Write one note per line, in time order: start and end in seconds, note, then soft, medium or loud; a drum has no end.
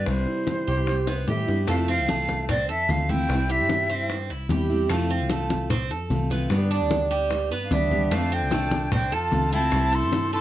0.00 0.26 B3 medium
0.06 0.26 C2 medium
0.06 0.86 C3 medium
0.06 0.87 E3 medium
0.06 0.87 G3 medium
0.06 0.87 E4 medium
0.06 1.28 C5 medium
0.06 high bongo medium
0.06 high conga soft
0.26 high bongo soft
0.26 high conga soft
0.47 high bongo medium
0.47 high conga medium
0.67 0.77 C2 medium
0.67 1.07 G4 medium
0.67 high bongo soft
0.67 high conga soft
0.78 1.26 C2 medium
0.87 muted steel-string acoustic guitar stroke medium
0.87 high bongo medium
0.87 high conga soft
1.07 1.27 B3 medium
1.07 high bongo medium
1.07 high conga soft
1.27 1.46 A2 medium
1.27 1.47 E3 soft
1.27 1.47 G3 soft
1.27 1.46 B3 soft
1.27 1.46 E4 soft
1.27 1.67 G4 medium
1.27 1.66 E5 medium
1.27 high bongo medium
1.27 high conga medium
1.47 1.66 G2 medium
1.47 1.68 E3 soft
1.47 1.68 G3 soft
1.47 1.67 B3 medium
1.47 1.67 E4 medium
1.47 low bongo medium
1.67 2.00 F2 loud
1.67 2.47 C3 medium
1.67 2.47 F3 medium
1.67 1.88 A3 medium
1.67 2.48 A3 medium
1.67 2.49 C4 medium
1.67 2.48 F4 medium
1.67 1.75 F5 medium
1.67 high bongo medium
1.67 high conga soft
1.67 maracas medium
1.88 2.08 C4 medium
1.88 2.45 F5 loud
1.88 high bongo soft
1.88 high conga soft
1.88 maracas medium
1.99 2.70 C2 medium
2.09 2.48 A3 medium
2.09 high bongo medium
2.09 high conga medium
2.09 maracas medium
2.29 high bongo soft
2.29 high conga medium
2.29 maracas soft
2.49 2.68 C4 medium
2.49 2.68 D5 medium
2.49 muted steel-string acoustic guitar stroke medium
2.49 high bongo medium
2.49 high conga soft
2.49 low conga medium
2.49 maracas medium
2.68 2.88 F2 medium
2.68 3.08 A4 medium
2.68 2.92 E5 medium
2.68 high bongo soft
2.68 high conga soft
2.68 maracas medium
2.89 3.27 D2 medium
2.89 3.08 F3 medium
2.89 3.08 A3 soft
2.89 3.09 C4 soft
2.89 3.08 F4 medium
2.89 3.12 F5 medium
2.89 high bongo soft
2.89 low bongo medium
2.89 high conga medium
2.89 maracas medium
3.09 3.29 F3 medium
3.09 3.29 A3 medium
3.09 3.29 C4 medium
3.09 3.48 E4 medium
3.09 3.29 F4 medium
3.09 3.53 G5 loud
3.09 high conga medium
3.09 maracas soft
3.28 3.61 C2 loud
3.28 4.08 C3 medium
3.28 4.08 E3 medium
3.28 4.09 G3 medium
3.28 4.10 C4 medium
3.28 4.09 E4 medium
3.28 high bongo medium
3.28 maracas medium
3.50 3.88 G4 medium
3.50 4.11 E5 medium
3.50 high bongo soft
3.50 high conga soft
3.50 maracas medium
3.60 4.31 G2 medium
3.69 high bongo medium
3.69 high conga medium
3.69 maracas medium
3.90 4.29 C4 medium
3.90 high bongo soft
3.90 high conga soft
3.90 maracas soft
4.09 muted steel-string acoustic guitar stroke medium
4.09 high bongo medium
4.09 high conga soft
4.09 maracas medium
4.29 4.49 C2 loud
4.29 4.50 E4 medium
4.29 high bongo soft
4.29 high conga soft
4.49 4.88 E2 medium
4.49 4.69 E3 medium
4.49 4.69 G3 soft
4.49 4.69 C4 medium
4.49 4.68 E4 medium
4.49 4.89 G4 medium
4.49 high bongo soft
4.49 low bongo medium
4.49 high conga medium
4.49 maracas medium
4.69 4.89 E3 medium
4.69 4.90 G3 medium
4.69 4.89 C4 medium
4.69 4.89 E4 medium
4.69 maracas soft
4.88 5.22 F2 loud
4.88 5.69 C3 medium
4.88 5.69 F3 medium
4.88 5.10 A3 medium
4.88 5.69 A3 medium
4.88 5.69 C4 medium
4.88 5.70 F4 medium
4.88 high bongo medium
4.88 high conga soft
4.88 maracas medium
5.10 5.30 C4 medium
5.10 high bongo soft
5.10 high conga soft
5.20 5.92 C2 medium
5.29 5.69 A3 medium
5.29 high bongo medium
5.29 high conga loud
5.29 maracas medium
5.50 high bongo soft
5.50 high conga medium
5.50 maracas soft
5.70 5.90 C4 medium
5.70 muted steel-string acoustic guitar stroke medium
5.70 high bongo medium
5.70 high conga soft
5.70 low conga medium
5.70 maracas medium
5.90 6.10 F2 medium
5.90 6.30 A4 medium
5.90 high bongo soft
5.90 high conga soft
6.10 6.49 C2 medium
6.10 6.30 F3 soft
6.10 6.30 A3 medium
6.10 6.30 C4 medium
6.10 6.29 F4 medium
6.10 high bongo soft
6.10 low bongo medium
6.10 high conga medium
6.10 maracas medium
6.30 6.50 F3 medium
6.30 6.50 A3 medium
6.30 6.70 B3 medium
6.30 6.50 C4 medium
6.30 6.50 F4 medium
6.30 high conga medium
6.30 maracas soft
6.49 6.82 G2 loud
6.49 7.29 D3 medium
6.49 7.30 G3 medium
6.49 7.30 B3 medium
6.49 7.31 D4 medium
6.49 7.30 G4 medium
6.49 high bongo medium
6.49 high conga soft
6.49 maracas medium
6.70 7.10 D4 medium
6.70 high bongo soft
6.70 high conga soft
6.70 maracas medium
6.81 7.52 D2 medium
6.91 high bongo medium
6.91 high conga medium
6.91 maracas medium
7.10 7.50 G3 medium
7.10 high bongo soft
7.10 high conga soft
7.10 maracas soft
7.30 muted steel-string acoustic guitar stroke medium
7.30 high bongo medium
7.30 high conga soft
7.30 maracas medium
7.51 7.70 G2 medium
7.51 7.71 B3 medium
7.51 high bongo soft
7.51 high conga soft
7.64 7.73 D4 soft
7.64 7.74 F5 medium
7.71 8.09 D2 medium
7.71 7.90 G3 medium
7.71 7.91 B3 soft
7.71 8.13 B3 medium
7.71 8.10 D4 medium
7.71 7.90 D4 soft
7.71 7.90 G4 medium
7.71 8.16 E5 medium
7.71 high bongo soft
7.71 low bongo medium
7.71 high conga medium
7.71 maracas medium
7.91 8.10 G3 medium
7.91 8.11 B3 medium
7.91 8.11 D4 medium
7.91 8.10 G4 medium
7.91 high conga medium
7.91 maracas soft
8.11 8.43 F2 loud
8.11 8.91 D3 medium
8.11 8.31 A3 medium
8.11 8.91 A3 medium
8.11 8.92 C4 medium
8.11 8.33 D4 medium
8.11 8.91 F4 medium
8.11 8.36 F5 medium
8.11 high bongo medium
8.11 maracas medium
8.31 8.51 C4 medium
8.31 8.92 D4 medium
8.31 8.93 G5 loud
8.31 high bongo soft
8.31 high conga soft
8.41 9.13 C2 medium
8.51 8.91 A3 medium
8.51 high bongo medium
8.51 high conga loud
8.51 maracas medium
8.71 high bongo soft
8.71 high conga loud
8.71 maracas soft
8.92 9.12 C4 medium
8.92 9.14 D4 medium
8.92 9.15 G5 medium
8.92 muted steel-string acoustic guitar stroke medium
8.92 high bongo medium
8.92 high conga soft
8.92 low conga medium
8.92 maracas medium
9.12 9.31 F2 loud
9.12 9.52 F4 medium
9.12 9.51 A4 medium
9.12 9.53 A5 loud
9.12 high bongo soft
9.12 high conga soft
9.31 9.70 C#2 medium
9.31 9.51 D3 soft
9.31 9.51 A3 soft
9.31 9.51 C4 medium
9.31 9.50 F4 medium
9.31 high bongo soft
9.31 low bongo medium
9.31 high conga medium
9.31 maracas medium
9.51 9.72 A3 medium
9.51 9.91 C4 medium
9.51 9.72 C4 medium
9.51 9.95 E4 medium
9.51 9.71 F4 medium
9.51 9.97 A5 medium
9.51 maracas soft
9.71 10.04 C2 loud
9.71 10.41 C3 medium
9.71 10.41 E3 medium
9.71 10.41 A3 medium
9.71 10.41 C4 medium
9.71 10.41 E4 medium
9.71 high bongo medium
9.71 high conga soft
9.71 maracas medium
9.93 10.31 E4 medium
9.93 10.32 A4 medium
9.93 10.34 C6 loud
9.93 high bongo soft
9.93 high conga soft
9.93 maracas medium
10.03 10.41 G2 medium
10.12 high bongo medium
10.12 high conga medium
10.12 maracas medium
10.32 10.41 A3 medium
10.32 10.41 A4 medium
10.32 10.41 C6 loud
10.32 high bongo soft
10.32 high conga soft
10.32 maracas soft